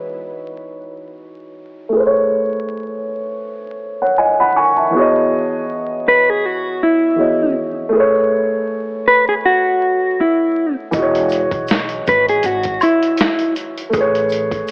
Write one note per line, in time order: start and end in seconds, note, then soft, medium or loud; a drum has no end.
0.00 1.86 E3 medium
0.00 1.88 D#4 medium
0.00 1.89 F#4 medium
0.00 1.90 G#4 medium
0.00 1.53 B4 loud
0.00 1.92 C#5 medium
1.89 4.12 A3 medium
1.89 4.14 G#4 medium
1.96 4.16 B4 medium
1.96 2.04 C5 medium
2.06 3.84 C#5 medium
4.02 4.18 C#5 soft
4.02 4.18 F#5 medium
4.18 4.39 D#5 medium
4.18 4.38 G#5 medium
4.40 4.56 F#5 medium
4.40 4.55 B5 medium
4.56 4.77 G#5 medium
4.56 4.76 C#6 medium
4.76 5.13 E5 soft
4.76 5.12 A5 soft
4.90 7.13 E3 medium
4.90 7.14 B3 medium
4.95 7.15 F#4 medium
4.95 7.16 G#4 medium
4.99 7.17 C#5 medium
4.99 7.18 D#5 medium
6.08 6.30 B4 loud
6.30 6.46 G#4 medium
6.46 6.83 F#4 loud
6.83 7.53 E4 medium
7.15 7.92 E3 soft
7.15 7.93 B3 soft
7.15 7.93 F#4 soft
7.15 7.91 G#4 soft
7.20 7.94 C#5 soft
7.20 7.95 D#5 medium
7.89 10.87 A3 medium
7.89 10.89 G#4 medium
7.96 10.91 B4 medium
7.96 10.93 C#5 medium
9.08 9.28 B4 medium
9.29 9.34 G#4 medium
9.46 10.22 F#4 loud
10.21 10.74 E4 medium
10.91 11.44 E1 loud
10.91 13.88 E3 medium
10.91 13.90 D#5 medium
10.91 kick loud
10.91 closed hi-hat loud
10.91 shaker medium
10.97 13.91 F#4 medium
10.97 13.92 G#4 medium
11.02 13.94 C#5 medium
11.15 closed hi-hat medium
11.29 closed hi-hat medium
11.29 shaker medium
11.51 11.98 B1 medium
11.51 kick medium
11.51 closed hi-hat soft
11.67 snare loud
11.67 closed hi-hat medium
11.67 shaker medium
11.89 closed hi-hat soft
12.07 12.39 G#1 medium
12.07 12.29 B4 loud
12.07 kick loud
12.07 closed hi-hat medium
12.07 shaker medium
12.28 12.46 G#4 medium
12.28 closed hi-hat soft
12.43 12.76 G#1 medium
12.43 12.83 F#4 loud
12.43 closed hi-hat medium
12.43 shaker medium
12.63 kick medium
12.63 closed hi-hat medium
12.81 13.53 E4 medium
12.81 closed hi-hat medium
12.81 high woodblock medium
12.81 shaker medium
13.03 closed hi-hat soft
13.17 snare loud
13.17 closed hi-hat medium
13.17 shaker medium
13.39 closed hi-hat medium
13.56 closed hi-hat medium
13.56 shaker soft
13.78 closed hi-hat soft
13.90 14.71 A3 medium
13.90 14.71 G#4 medium
13.90 shaker medium
13.94 14.58 A1 loud
13.94 14.71 B4 medium
13.94 kick loud
13.94 closed hi-hat medium
14.01 14.71 C#5 medium
14.15 closed hi-hat soft
14.29 closed hi-hat medium
14.29 shaker soft
14.51 kick medium
14.51 closed hi-hat soft
14.67 shaker medium